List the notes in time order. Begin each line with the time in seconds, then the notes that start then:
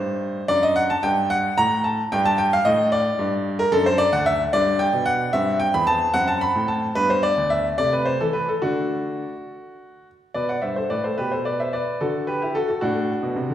Already playing: G2 D#4 C5
0.48 F#2 D4 D5
0.63 D#5
0.76 F#5
0.90 A5
1.03 G2 G5
1.30 F#5
1.58 A2 A#5
1.84 A5
2.12 G2 D4 G5
2.25 A5
2.38 G5
2.53 F5
2.65 A2 D#5
2.92 D5
3.19 G2
3.59 A#4
3.72 F#2 D4 A4
3.86 C5
3.98 D5
4.12 D2 F#5
4.26 E5
4.53 G2 D4 D5
4.79 G5
4.93 B2
5.06 F#5
5.33 G2 C4 E5
5.60 G5
5.74 E2 B5
5.87 A5
6.14 F#2 C4 F#5
6.28 A5
6.41 B5
6.56 A2
6.68 A5
6.95 G2 B3 B4
7.10 C5
7.23 D5
7.37 D2
7.50 E5
7.78 C3 A3 D5
7.93 B4
8.05 C5
8.20 E3 A4
8.33 B4
8.49 A4
8.62 D3 A3 D4 F#4
10.34 B2 B4 D5
10.49 D5 F#5
10.62 G2 C5 E5
10.76 A4 C5
10.90 A2 B4 D5
11.04 A4 C5
11.18 B2 G4 B4
11.32 A4 C5
11.45 B4 D5
11.60 C5 E5
11.73 B4 D5
12.01 D3 F#4 A4
12.27 G4 B4
12.42 E4 G4
12.55 F#4 A4
12.68 F#4 A4
12.81 A2 D4 F#4
13.23 B2
13.36 C3
13.50 D3